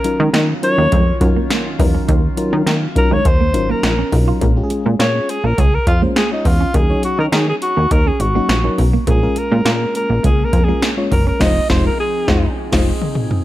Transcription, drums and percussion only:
0.04 closed hi-hat
0.34 snare, closed hi-hat
0.63 closed hi-hat
0.92 kick, closed hi-hat
1.21 kick, closed hi-hat
1.50 snare, closed hi-hat
1.79 kick, open hi-hat
2.09 kick, closed hi-hat
2.37 closed hi-hat
2.67 snare, closed hi-hat
2.96 kick, closed hi-hat
3.25 kick, closed hi-hat
3.54 closed hi-hat
3.83 snare, closed hi-hat
4.12 kick, open hi-hat
4.41 kick, closed hi-hat
4.70 closed hi-hat
5.00 snare, closed hi-hat
5.29 closed hi-hat
5.58 kick, closed hi-hat
5.87 kick, closed hi-hat
6.16 snare, closed hi-hat
6.45 kick, open hi-hat
6.74 kick, closed hi-hat
7.03 closed hi-hat
7.33 snare, closed hi-hat
7.62 closed hi-hat
7.91 kick, closed hi-hat
8.20 closed hi-hat
8.49 snare, closed hi-hat
8.78 kick, open hi-hat
9.07 kick, closed hi-hat
9.36 closed hi-hat
9.66 snare, closed hi-hat
9.95 closed hi-hat
10.24 kick, closed hi-hat
10.53 kick, closed hi-hat
10.82 snare, closed hi-hat
11.11 kick, open hi-hat
11.41 kick, snare, crash
11.70 kick, snare
12.28 kick, snare
12.72 kick, snare, crash
13.02 high tom
13.15 mid tom
13.31 mid tom

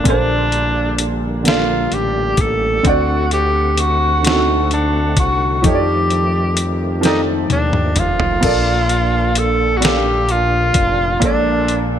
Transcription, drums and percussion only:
0.05 kick, closed hi-hat
0.52 closed hi-hat
0.98 closed hi-hat
1.45 snare, closed hi-hat
1.92 closed hi-hat
2.37 kick, closed hi-hat
2.85 kick, closed hi-hat
3.31 closed hi-hat
3.78 closed hi-hat
4.24 snare, closed hi-hat
4.71 closed hi-hat
5.17 kick, closed hi-hat
5.64 kick, closed hi-hat
6.10 closed hi-hat
6.57 closed hi-hat
7.03 snare, closed hi-hat
7.50 closed hi-hat, high tom
7.73 mid tom
7.96 closed hi-hat, mid tom
8.20 floor tom
8.43 kick, closed hi-hat, crash
8.89 closed hi-hat
9.35 closed hi-hat
9.82 snare, closed hi-hat
10.29 closed hi-hat
10.74 kick, closed hi-hat
11.22 kick, closed hi-hat
11.68 closed hi-hat

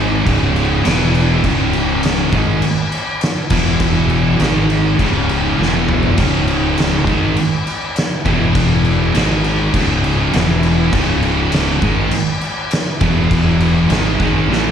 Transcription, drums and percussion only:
0.27 kick, crash
0.56 crash
0.85 snare, crash
1.15 crash
1.44 kick, crash
1.73 crash
2.03 snare, crash
2.33 kick, crash
2.62 crash
2.92 crash
3.21 snare, crash
3.50 kick, crash
3.80 kick, crash
4.10 crash
4.40 snare, crash
4.70 crash
4.99 kick, crash
5.29 crash
5.62 snare
5.88 mid tom
6.03 floor tom
6.18 kick, crash
6.48 crash
6.78 snare, crash
7.07 kick, crash
7.36 crash
7.67 crash
7.96 snare, crash
8.26 kick, crash
8.55 kick, crash
8.85 crash
9.15 snare, crash
9.44 crash
9.74 kick, crash
10.04 crash
10.33 snare, crash
10.63 crash
10.93 kick, crash
11.23 crash
11.52 snare, crash
11.82 kick, crash
12.11 crash
12.41 crash
12.71 snare, crash
13.01 kick, crash
13.31 kick, crash
13.60 crash
13.90 snare, crash
14.20 kick, crash
14.53 snare

